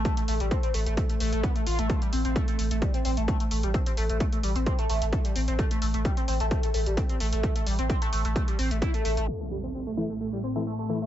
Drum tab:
HH |xxoxxxoxxxoxxxox|xxoxxxoxxxoxxxox|xxoxxxoxxxoxxxox|xxoxxxoxxxoxxxox|
BD |o---o---o---o---|o---o---o---o---|o---o---o---o---|o---o---o---o---|

HH |xxoxxxoxxxoxxxox|----------------|
BD |o---o---o---o---|----------------|